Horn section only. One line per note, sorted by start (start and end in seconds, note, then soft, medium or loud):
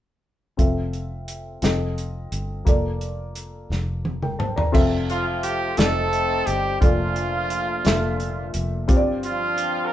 5.09 5.75 F3 medium
5.09 5.75 A3 medium
5.09 5.75 C4 medium
5.09 5.75 F4 medium
5.79 6.49 A3 medium
5.79 6.79 C4 medium
5.79 6.79 D#4 medium
5.79 6.49 A4 medium
6.51 6.84 G3 medium
6.51 6.84 G4 medium
6.84 8.53 F3 medium
6.84 8.52 A3 medium
6.84 8.52 D4 soft
6.84 8.53 F4 medium
9.26 9.91 F3 medium
9.26 9.93 C4 medium
9.26 9.93 D4 medium
9.26 9.91 F4 medium